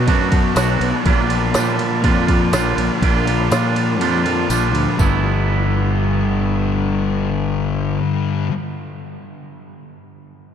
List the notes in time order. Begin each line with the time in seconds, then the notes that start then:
Already playing: F#3 B3
0.06 F#2 B2 F#3 A3 D4 F#4, kick, ride
0.31 F#3 A3 B3 D4 F#4, kick, ride
0.55 B1 B2 F#3 A3 B3 D4 F#4, snare, ride, tambourine
0.80 B1, ride
1.04 A#1 A#2 D3 F3 G3 A#3 D4 F4, kick, ride
1.30 F3 A#3, ride
1.54 A#2 D3 F3 G3 A#3 D4 F4, snare, ride, tambourine
1.79 F3 A#3, ride
2.02 F2 A#2 D3 G3 D4 F4, kick, ride
2.27 F3 G3 A#3 D4 F4, kick, ride
2.52 A#1 A#2 D3 F3 G3 A#3 D4 F4, snare, ride, tambourine
2.77 A#1, ride
3.01 A#1 A#2 D3 F3 G3 A#3 D4 F4, kick, ride
3.26 F3 A#3, ride
3.40 snare
3.50 A#2 D3 F3 G3 A#3 D4 F4, snare, ride, tambourine
3.75 F3 A#3, ride
3.99 F2 A#2 D3 G3 D4 F4, ride
4.24 F3 G3 A#3 D4 F4, ride
4.49 A#1 A#2 D3 F3 G3 A#3 D4 F4, ride, tambourine
4.75 D2, ride
4.97 G1 G2 D3 E3 A3 B3, kick, tambourine
5.01 G3 E4